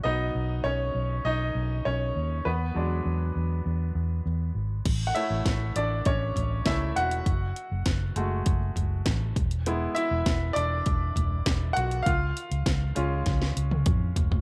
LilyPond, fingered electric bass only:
\new Staff \with { instrumentName = "Fingered electric bass" } { \clef bass \time 4/4 \key e \major \tempo 4 = 100 b,,8 b,,8 b,,8 b,,8 b,,8 b,,8 b,,8 dis,8 | e,8 e,8 e,8 e,8 e,8 e,8 e,8 gis,,8 | \key a \major a,,8 r16 a,,16 a,,8 a,,8 a,,8 a,,8 cis,8 e,,8 | fis,,8 r16 fis,,16 fis,,8 fis,,8 fis,,8 fis,,8 a,,8 e,,8~ |
e,,8 r16 e,,16 e,,8 e,,8 e,,8 e,,8 e,,8 b,,8 | cis,8 r16 cis,16 cis,8 cis,8 cis,8 cis,8 eis,8 eis,,8 | }